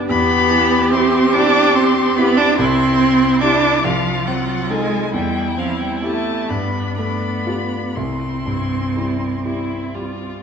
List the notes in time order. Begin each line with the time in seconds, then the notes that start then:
Already playing: D3 B3 D4 G4
0.09 E2 B3 G4 B5
0.51 E3
0.92 C4 E4 G4 C6
1.33 C4 D4 E4 G4 D6
1.75 C4 C6
2.16 B3 C4 E4 G4 B5
2.37 D4 D6
2.56 C2 C4 E4 C6
2.99 C4
3.41 D4 E4 G4 D6
3.84 C2 F3 F4 F5
4.26 F#3 C4 F#5
4.69 G#3 D#4 A4 G#5
5.13 E2 G3 E4 G5
5.57 F3 C4 F5
5.80 G3 G5
6.03 A3 E4 G4 A5
6.49 G2 B3 D4 B5
6.97 A3 B3 B5
7.47 F4 G4
7.96 C2 C4 E4 C6
8.46 G2
8.96 G3 E4 G4
9.45 G3 E4 G4
9.94 G3 F4